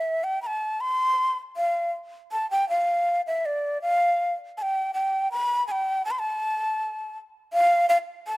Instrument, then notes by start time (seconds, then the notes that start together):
quena
Already playing: E5
0.24 G5
0.42 B5
0.47 A5
0.81 C6
1.56 F5
2.32 A5
2.51 G5
2.69 F5
3.27 E5
3.46 D5
3.82 F5
4.58 A5
4.62 G5
4.94 G5
5.32 B5
5.68 G5 A5
6.05 A5
6.11 C6
6.19 A5
7.53 F5
7.89 F5
8.27 A5